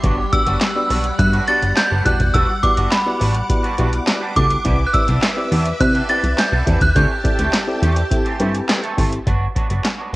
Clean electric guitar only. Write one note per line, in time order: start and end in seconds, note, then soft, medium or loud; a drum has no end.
0.03 0.21 F#3 medium
0.03 0.17 B3 medium
0.03 0.17 D4 medium
0.03 0.16 F#4 medium
0.17 muted clean electric guitar stroke soft
0.32 muted clean electric guitar stroke soft
0.46 0.59 F#3 medium
0.46 0.60 B3 medium
0.46 0.60 D4 medium
0.46 0.60 F#4 medium
0.60 muted clean electric guitar stroke soft
0.75 muted clean electric guitar stroke soft
0.89 1.08 F#3 medium
0.89 1.04 B3 medium
0.89 1.04 D4 medium
0.89 1.03 F#4 medium
1.04 muted clean electric guitar stroke soft
1.18 muted clean electric guitar stroke soft
1.33 1.46 F#3 medium
1.33 1.46 B3 medium
1.33 1.47 D4 medium
1.33 1.47 F#4 medium
1.47 1.66 F#3 medium
1.47 1.62 B3 medium
1.47 1.61 D4 loud
1.47 1.60 F#4 loud
1.62 muted clean electric guitar stroke medium
1.90 2.04 F#3 medium
1.90 2.04 B3 medium
1.90 2.05 D4 medium
1.90 2.06 A4 medium
2.05 2.19 G3 medium
2.05 2.20 B3 medium
2.05 2.19 D4 medium
2.05 2.19 G4 medium
2.20 muted clean electric guitar stroke soft
2.34 2.52 G3 loud
2.34 2.49 B3 medium
2.34 2.48 D4 loud
2.34 2.47 F#4 loud
2.48 muted clean electric guitar stroke soft
2.63 muted clean electric guitar stroke medium
2.77 2.90 G3 medium
2.77 2.91 B3 medium
2.77 2.91 D4 medium
2.77 2.92 F#4 medium
2.92 muted clean electric guitar stroke soft
3.06 muted clean electric guitar stroke medium
3.20 3.39 G3 medium
3.20 3.35 B3 medium
3.20 3.34 D4 medium
3.20 3.34 F#4 medium
3.35 muted clean electric guitar stroke medium
3.49 muted clean electric guitar stroke soft
3.63 3.76 G3 medium
3.63 3.77 B3 medium
3.63 3.78 D4 medium
3.63 3.78 F#4 medium
3.78 3.96 G3 medium
3.78 3.93 B3 medium
3.78 3.92 D4 medium
3.78 3.91 F#4 medium
3.92 muted clean electric guitar stroke medium
4.07 muted clean electric guitar stroke soft
4.21 4.34 G3 medium
4.21 4.35 B3 medium
4.21 4.36 D4 medium
4.21 4.36 G4 medium
4.36 4.50 G3 medium
4.36 4.50 B3 medium
4.36 4.50 D4 medium
4.36 4.50 G4 medium
4.50 muted clean electric guitar stroke medium
4.64 4.83 E3 medium
4.64 4.79 B3 medium
4.64 4.79 D4 medium
4.64 4.78 G4 medium
4.79 muted clean electric guitar stroke medium
4.94 muted clean electric guitar stroke medium
5.08 5.21 E3 medium
5.08 5.22 B3 medium
5.08 5.22 D4 medium
5.08 5.22 G4 medium
5.22 muted clean electric guitar stroke soft
5.37 muted clean electric guitar stroke medium
5.51 5.70 E3 medium
5.51 5.66 B3 loud
5.51 5.65 D4 medium
5.51 5.64 G4 medium
5.66 muted clean electric guitar stroke medium
5.80 muted clean electric guitar stroke soft
5.94 6.08 E3 medium
5.94 6.08 B3 medium
5.94 6.09 D4 medium
5.94 6.09 G4 medium
6.09 6.27 E3 medium
6.09 6.24 B3 medium
6.09 6.23 D4 medium
6.09 6.22 G4 medium
6.23 muted clean electric guitar stroke soft
6.38 muted clean electric guitar stroke soft
6.52 6.65 E3 medium
6.52 6.66 B3 medium
6.52 6.66 D4 medium
6.52 6.67 A4 medium
6.66 6.81 E3 medium
6.66 6.81 B3 medium
6.66 6.80 D4 medium
6.66 6.80 A4 medium
6.81 muted clean electric guitar stroke soft
6.95 7.14 E3 medium
6.95 7.10 A3 medium
6.95 7.09 C4 medium
6.95 7.08 G4 medium
7.10 muted clean electric guitar stroke soft
7.24 muted clean electric guitar stroke soft
7.39 7.52 E3 medium
7.39 7.52 A3 medium
7.39 7.53 C4 medium
7.39 7.53 G4 medium
7.53 muted clean electric guitar stroke soft
7.68 muted clean electric guitar stroke soft
7.82 8.00 E3 medium
7.82 7.96 A3 medium
7.82 7.96 C4 medium
7.82 7.95 G4 medium
7.96 muted clean electric guitar stroke soft
8.11 muted clean electric guitar stroke soft
8.25 8.38 E3 medium
8.25 8.39 A3 medium
8.25 8.40 C4 medium
8.25 8.40 G4 medium
8.40 8.58 E3 medium
8.40 8.54 A3 medium
8.40 8.54 C4 medium
8.40 8.53 G4 loud
8.54 muted clean electric guitar stroke soft
8.69 muted clean electric guitar stroke soft
8.83 8.96 E3 medium
8.83 8.97 A3 medium
8.83 8.97 C4 medium
8.83 8.98 A4 medium
8.97 9.12 E3 medium
8.97 9.12 A3 medium
8.97 9.11 C4 medium
8.97 9.11 A4 medium
9.12 muted clean electric guitar stroke soft
9.26 9.45 F#3 medium
9.26 9.45 B3 medium
9.26 9.45 D4 medium
9.26 9.45 F#4 medium
9.55 9.69 F#3 medium
9.55 9.69 B3 medium
9.55 9.69 D4 medium
9.55 9.68 F#4 medium
9.69 9.83 F#3 soft
9.69 9.83 B3 medium
9.69 9.83 D4 medium
9.69 9.84 F#4 medium
9.84 muted clean electric guitar stroke soft
9.98 10.11 F#3 soft
9.98 10.12 B3 soft
9.98 10.13 D4 medium
9.98 10.13 F#4 medium
10.12 10.16 F#3 medium